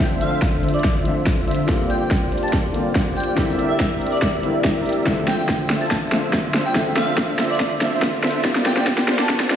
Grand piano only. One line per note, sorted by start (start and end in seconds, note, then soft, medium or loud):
0.00 1.03 D3 medium
0.00 1.04 F3 medium
0.00 1.05 A3 medium
0.00 1.06 C4 medium
0.00 0.02 E5 loud
0.00 1.04 E5 loud
1.03 1.65 D3 medium
1.03 1.66 F3 medium
1.03 1.66 A3 medium
1.03 1.67 C4 medium
1.03 1.67 E5 medium
1.67 2.71 D3 loud
1.67 2.71 G3 medium
1.67 2.72 A#3 medium
1.67 2.72 C4 medium
1.71 2.73 F4 loud
2.72 3.34 D3 medium
2.72 3.35 G3 medium
2.72 3.35 A#3 medium
2.72 3.36 C4 medium
2.72 3.36 F4 medium
3.36 4.40 D3 loud
3.36 4.40 G3 medium
3.36 4.41 A#3 medium
3.36 4.41 C4 medium
3.40 4.42 E4 loud
4.41 5.03 D3 medium
4.41 5.04 G3 medium
4.41 5.04 A#3 medium
4.41 5.05 C4 medium
4.41 5.05 E4 medium
5.04 6.09 D3 loud
5.04 6.09 F3 medium
5.04 6.10 A3 medium
5.04 6.10 C4 medium
5.09 6.11 E5 loud
6.10 6.72 D3 medium
6.10 6.73 F3 medium
6.10 6.73 A3 medium
6.10 6.74 C4 medium
6.10 6.74 E5 medium
6.74 7.78 D3 loud
6.74 7.78 F3 medium
6.74 7.79 A3 medium
6.74 7.79 C4 medium
6.78 7.80 E5 loud
7.79 8.41 D3 medium
7.79 8.42 F3 medium
7.79 8.42 A3 medium
7.79 8.43 C4 medium
7.83 8.43 E5 medium
8.43 9.47 D3 medium
8.43 9.47 G3 medium
8.43 9.48 A#3 medium
8.43 9.48 C4 medium
8.43 9.49 F4 loud
9.48 9.56 D3 medium
9.48 9.56 G3 medium
9.48 9.56 A#3 medium
9.48 9.56 C4 medium
9.52 9.56 F4 medium